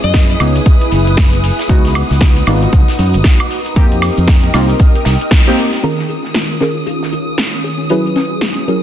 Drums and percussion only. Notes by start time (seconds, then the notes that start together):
0.04 closed hi-hat, shaker
0.14 kick, snare, closed hi-hat, shaker
0.30 closed hi-hat, shaker
0.40 closed hi-hat, open hi-hat, high woodblock
0.55 closed hi-hat, shaker
0.66 kick, closed hi-hat, shaker
0.81 closed hi-hat, shaker
0.91 closed hi-hat, open hi-hat
1.07 closed hi-hat, shaker
1.17 kick, snare, closed hi-hat, shaker
1.33 closed hi-hat, shaker
1.44 closed hi-hat, open hi-hat
1.59 snare, closed hi-hat, shaker
1.69 kick, closed hi-hat, shaker
1.85 snare, closed hi-hat, shaker
1.95 closed hi-hat, open hi-hat, high woodblock
2.11 snare, closed hi-hat, shaker
2.21 kick, snare, closed hi-hat, shaker
2.37 closed hi-hat, shaker
2.47 closed hi-hat, open hi-hat, high woodblock
2.63 closed hi-hat, shaker
2.73 kick, closed hi-hat, shaker
2.88 snare, closed hi-hat, shaker
2.99 closed hi-hat, open hi-hat
3.14 closed hi-hat, shaker
3.24 kick, snare, closed hi-hat, shaker
3.40 closed hi-hat, high woodblock, shaker
3.50 closed hi-hat, open hi-hat
3.66 closed hi-hat, shaker
3.76 kick, closed hi-hat, shaker
3.92 closed hi-hat, shaker
4.02 snare, closed hi-hat, open hi-hat, high woodblock
4.18 closed hi-hat, shaker
4.28 kick, snare, closed hi-hat, shaker
4.43 closed hi-hat, shaker
4.53 snare, closed hi-hat, open hi-hat, high woodblock
4.69 closed hi-hat, shaker
4.79 kick, closed hi-hat, shaker
4.95 closed hi-hat, shaker
5.05 snare, closed hi-hat, open hi-hat
5.21 closed hi-hat, shaker
5.31 kick, snare, closed hi-hat, shaker
5.46 closed hi-hat, shaker
5.57 closed hi-hat, open hi-hat
5.73 snare, closed hi-hat, shaker
5.83 closed hi-hat
5.99 snare
6.09 closed hi-hat
6.24 snare
6.34 snare, closed hi-hat
6.50 closed hi-hat
6.60 snare, closed hi-hat
6.86 closed hi-hat
7.03 snare
7.13 closed hi-hat
7.38 snare
7.54 closed hi-hat
7.64 closed hi-hat
7.90 closed hi-hat
8.06 closed hi-hat
8.16 snare, closed hi-hat
8.41 snare, closed hi-hat
8.68 closed hi-hat